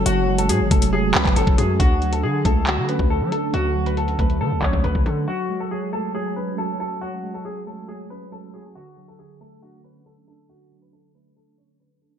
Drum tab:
HH |x--xx-xx----x-x-|x-xx--x-x-x---x-|x--xxxxx----x-x-|----------------|
CP |----------xx----|--------x-------|----------x-----|----------------|
BD |------o----o-o--|o-----o----o----|------o---oo-o--|----------------|

HH |----------------|----------------|----------------|
CP |----------------|----------------|----------------|
BD |----------------|----------------|----------------|